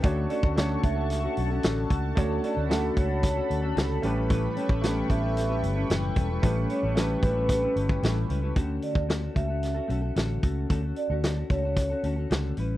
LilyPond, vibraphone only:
\new Staff \with { instrumentName = "Vibraphone" } { \time 4/4 \key d \major \tempo 4 = 112 r8 d''16 r8. e''4 r4. | r8 d''16 r8. cis''4 r4. | r8 cis''16 r8. e''4 r4. | r8 cis''16 r8. b'4 r4. |
r8 d''16 r8. e''4 r4. | r8 d''16 r8. cis''4 r4. | }